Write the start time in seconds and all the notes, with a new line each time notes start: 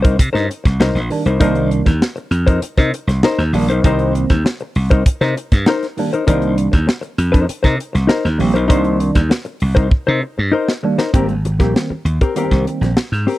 Already playing: C2
0.02 D#4 A#4 C5, kick, closed hi-hat
0.19 C3, muted hollow-body jazz guitar stroke, kick, closed hi-hat
0.33 G2 D#4 A#4 C5, snare, closed hi-hat
0.49 muted hollow-body jazz guitar stroke, closed hi-hat
0.64 C2, muted hollow-body jazz guitar stroke, kick, snare, closed hi-hat
0.79 C2 D#4 A#4 C5, snare
0.95 A#1, snare, closed hi-hat
1.10 D#3 G3 A#3 D4, muted hollow-body jazz guitar stroke, open hi-hat
1.26 C2 D#4 A#4 C5, closed hi-hat
1.40 C2 D#3 G3 A#3 D4 D#4 A#4 C5, kick, closed hi-hat
1.55 closed hi-hat
1.71 closed hi-hat
1.86 D#2, muted hollow-body jazz guitar stroke, kick, snare, closed hi-hat
2.01 muted hollow-body jazz guitar stroke, snare
2.16 muted hollow-body jazz guitar stroke, closed hi-hat
2.31 F2, closed hi-hat
2.47 D#4 A#4 C5, kick, closed hi-hat
2.61 muted slap bass stroke, muted hollow-body jazz guitar stroke, closed hi-hat
2.77 C3 D#4 A#4 C5, kick, snare, closed hi-hat
2.93 muted hollow-body jazz guitar stroke, closed hi-hat
3.07 C2, muted hollow-body jazz guitar stroke, snare, closed hi-hat
3.23 D#4 A#4 C5, snare
3.38 D#2, snare, closed hi-hat
3.53 A#1 D#3 G3 A#3 D4, muted hollow-body jazz guitar stroke, open hi-hat
3.68 B1 A#4 C5, closed hi-hat
3.72 D#4
3.83 C2 D#3 G3 A#3 C4 D#4 A#4 C5, kick, closed hi-hat
3.99 closed hi-hat
4.15 closed hi-hat
4.30 D#2, muted hollow-body jazz guitar stroke, kick, snare, closed hi-hat
4.45 muted hollow-body jazz guitar stroke, snare
4.60 muted hollow-body jazz guitar stroke, closed hi-hat
4.75 C2, open hi-hat
4.90 D#4 A#4 C5, kick, closed hi-hat
5.06 muted hollow-body jazz guitar stroke, kick, closed hi-hat
5.21 C3 D#4 A#4 C5, snare, closed hi-hat
5.36 muted hollow-body jazz guitar stroke, closed hi-hat
5.52 G2, muted hollow-body jazz guitar stroke, kick, snare, closed hi-hat
5.66 D#4 A#4 C5, snare
5.83 snare, closed hi-hat
5.97 D#3 G3 A#3 D4, muted hollow-body jazz guitar stroke, open hi-hat
6.13 D#4 A#4 C5, closed hi-hat
6.27 C2 D#3 G3 A#3 D4 D#4 A#4 C5, kick, closed hi-hat
6.42 closed hi-hat
6.58 closed hi-hat
6.72 D#2, muted hollow-body jazz guitar stroke, kick, snare, closed hi-hat
6.87 muted hollow-body jazz guitar stroke, snare
7.01 muted hollow-body jazz guitar stroke, closed hi-hat
7.18 F2, closed hi-hat
7.32 D#4 A#4 C5, kick, closed hi-hat
7.48 muted hollow-body jazz guitar stroke, muted slap bass stroke, closed hi-hat
7.63 C3 D#4 A#4 C5, kick, snare, closed hi-hat
7.78 muted hollow-body jazz guitar stroke, closed hi-hat
7.93 C2, muted hollow-body jazz guitar stroke, snare, closed hi-hat
8.07 D#4 A#4 C5, snare
8.25 D#2, snare, closed hi-hat
8.38 A#1 D#3 G3 A#3 C4, muted hollow-body jazz guitar stroke, open hi-hat
8.54 B1 D#4 A#4 C5, closed hi-hat
8.68 C2 D#3 G3 A#3 D4 D#4 A#4 C5, kick, closed hi-hat
8.84 closed hi-hat
9.00 closed hi-hat
9.15 D#2, muted hollow-body jazz guitar stroke, kick, snare, closed hi-hat
9.29 muted hollow-body jazz guitar stroke, snare
9.45 muted hollow-body jazz guitar stroke, closed hi-hat
9.60 C2, open hi-hat
9.75 D#4 A#4 C5, kick, closed hi-hat
9.90 muted hollow-body jazz guitar stroke, kick
10.07 C3 D#4 A#4 C5
10.22 muted hollow-body jazz guitar stroke
10.38 G2, muted hollow-body jazz guitar stroke
10.52 D#4 A#4 C5
10.68 snare
10.83 D#3 G3 A#3 D4, muted hollow-body jazz guitar stroke
10.98 D#4 A#4 C5, snare
11.13 G#1 D#3 G3 A#3 C4 G4 A#4, kick, closed hi-hat
11.29 muted hollow-body jazz guitar stroke, closed hi-hat
11.45 muted hollow-body jazz guitar stroke, closed hi-hat
11.59 A#1 D#3 G3 A#3 C4 G4 A#4, kick, snare, closed hi-hat
11.76 muted hollow-body jazz guitar stroke, snare
11.90 muted slap bass stroke, muted hollow-body jazz guitar stroke
12.05 D#2, closed hi-hat
12.21 C4 G4 A#4, kick, closed hi-hat
12.35 D#3 G3 A#3 B3 C4 G4 A#4, closed hi-hat
12.44 C4
12.51 C2, kick, snare, closed hi-hat
12.67 muted hollow-body jazz guitar stroke, closed hi-hat
12.81 A#1, muted hollow-body jazz guitar stroke, snare, closed hi-hat
12.97 muted hollow-body jazz guitar stroke, snare
13.12 G#2, snare, closed hi-hat
13.27 C4 G4 A#4, open hi-hat